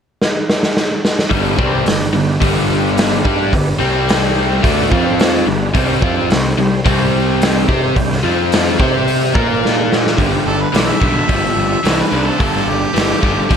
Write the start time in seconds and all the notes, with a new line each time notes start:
0.22 snare
0.49 snare
0.63 snare
0.77 snare
1.05 snare
1.19 snare
1.30 G1 G2 D3 G3 B3 D4 G4 B4, kick, open hi-hat
1.57 C2 C3 G3 B3 C4 D4 G4 B4, kick
1.86 G1 G2 D3 B3 D4 G4 B4, snare, open hi-hat
2.13 G1 G2 D3 B3 D4 G4 B4
2.41 G1 G2 D3 G3 B3 D4 G4 B4, kick, open hi-hat
2.67 B3 D4 G4 B4
2.96 B3 D4 G4 B4, snare, open hi-hat
3.24 G2 G3 B3 D4 G4 B4, kick
3.52 G1 G2 D3 B3 D4 G4 B4, kick, open hi-hat
3.79 C2 C3 G3 C4 G4 C5
4.09 snare, open hi-hat
4.35 G3 C4 G4 C5
4.62 D2 D3 A3 B3 D4 G4 B4, kick, open hi-hat
4.90 F2 F3 C4 F4 C5, kick
5.19 snare, open hi-hat
5.46 G1 G2 D3 B3 D4 G4 B4
5.74 C2 C3 G3 C4 G4 C5, kick, open hi-hat
6.01 F2 F3 G3 C4 F4 G4 C5, kick
6.30 C2 C3 G3 C4 G4 C5, snare, open hi-hat
6.57 C2 C3 G3 C4 G4 C5
6.85 C2 C3 G3 C4 G4 C5, kick, open hi-hat
7.15 G3 C4 G4 C5
7.41 G3 C4 G4 C5, snare, open hi-hat
7.68 C3 G3 C4 G4 C5, kick
7.96 C2 C3 G3 C4 G4 C5, kick, open hi-hat
8.12 snare
8.23 F2 F3 C4 F4 C5
8.52 snare, open hi-hat
8.78 C3 G3 C4 G4 C5, kick
9.08 open hi-hat
9.34 A#2 F3 A#3 F4 A#4, kick
9.65 snare
9.91 F3 A#3 F4 A#4, snare
10.07 snare
10.17 G1 G2 D3 G3 B3 D4 G4, kick, open hi-hat
10.43 G1 G3 B3 D4 G4 A4
10.62 B4
10.72 B1 G2 E3 G3 B3 D4 G4 D5, snare, open hi-hat
10.88 E5
10.98 B1 G2 D3 G3 B3 D4 G4, kick
11.28 G1 G2 F3 G3 B3 D4 G4, kick, open hi-hat
11.55 G1 G3 B3 D4 G4
11.82 C2 G2 E3 G3 B3 D4 G4, open hi-hat
11.87 snare
12.00 B4
12.10 C2 G2 D3 G3 B3 D4 G4
12.27 A4
12.38 G1 G2 D3 G3 B3 D4 G4, kick, open hi-hat
12.56 snare
12.66 G1 G3 B3 D4 G4
12.94 G1 G2 E3 G3 B3 D4 G4, open hi-hat
12.98 snare
13.21 G1 G2 D3 G3 B3 D4 G4, kick
13.48 G1 G2 F3 G3 B3 D4 G4, kick, open hi-hat